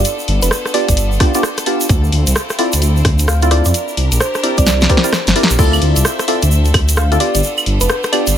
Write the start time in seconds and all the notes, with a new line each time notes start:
Already playing: B3 D4 F4 A4
0.04 closed hi-hat, shaker
0.19 shaker
0.28 G1, open hi-hat
0.42 F1 B4, closed hi-hat, shaker
0.51 B4, cross-stick, shaker
0.66 cross-stick, shaker
0.74 B3 D4 F4 G4 D5, open hi-hat
0.88 G1, kick, closed hi-hat, shaker
0.97 closed hi-hat, shaker
1.12 shaker
1.20 B3 D4 F4 G4 D5, kick, cross-stick, open hi-hat
1.34 B3 D4 F4 G4 D5, closed hi-hat, shaker
1.43 cross-stick, shaker
1.58 cross-stick, closed hi-hat, shaker
1.66 B3 D4 F4 G4 D5, open hi-hat
1.81 closed hi-hat, shaker
1.89 D2 C4 E4 F4, kick, closed hi-hat, shaker
2.04 shaker
2.12 D2, open hi-hat
2.27 C2, closed hi-hat, shaker
2.36 cross-stick, shaker
2.50 cross-stick, shaker
2.59 C4 E4 F4 A4 D5, open hi-hat
2.73 D2, closed hi-hat, shaker
2.82 closed hi-hat, shaker
2.97 shaker
3.05 D2, kick, cross-stick, open hi-hat
3.19 closed hi-hat, shaker
3.28 F5, cross-stick, shaker
3.42 C4 E4 F4 A4 D5 F5, closed hi-hat, shaker
3.51 C4 E4 F4 A4 D5, cross-stick, open hi-hat
3.65 F2 D5, closed hi-hat, shaker
3.74 D4 E4 G4 A#4, closed hi-hat, shaker
3.88 shaker
3.97 C2, open hi-hat
4.12 A#1, closed hi-hat, shaker
4.20 C5, cross-stick, shaker
4.35 cross-stick, shaker
4.43 C4 E4 G4 A#4 D5, open hi-hat
4.58 C2 D5, kick, closed hi-hat, shaker
4.66 snare, closed hi-hat, shaker
4.81 snare, shaker
4.89 C4 E4 G4 A#4 C5 D5, kick, open hi-hat
4.97 snare
5.04 C4 E4 G4 A#4 D5, closed hi-hat, shaker
5.13 cross-stick, snare, shaker
5.27 G1, snare, closed hi-hat, shaker
5.36 C4 E4 G4 A#4 D5, open hi-hat
5.43 snare
5.50 A#1, closed hi-hat, shaker
5.59 D2 C4 E4 F4 A4 D5 E5, kick, crash, shaker
5.73 claves, shaker
5.82 D2, open hi-hat
5.96 C2, closed hi-hat, shaker
6.05 cross-stick, shaker
6.19 cross-stick, closed hi-hat, shaker
6.28 C4 E4 F4 A4 D5, open hi-hat
6.42 D2, closed hi-hat, shaker
6.51 shaker
6.65 closed hi-hat, shaker
6.74 D2, kick, cross-stick, open hi-hat, claves
6.89 closed hi-hat, shaker
6.97 F5, cross-stick
7.12 C4 E4 F4 A4 D5 F5, closed hi-hat, shaker
7.20 B3 D4 F4 G4 D5, open hi-hat
7.35 G1 D5, closed hi-hat, shaker
7.43 shaker
7.58 claves, shaker
7.66 G1, open hi-hat
7.81 F1 B4, closed hi-hat, shaker
7.89 B4, cross-stick, shaker
8.03 cross-stick, closed hi-hat, shaker
8.12 B3 D4 F4 G4 D5, open hi-hat, claves
8.27 G1, closed hi-hat, shaker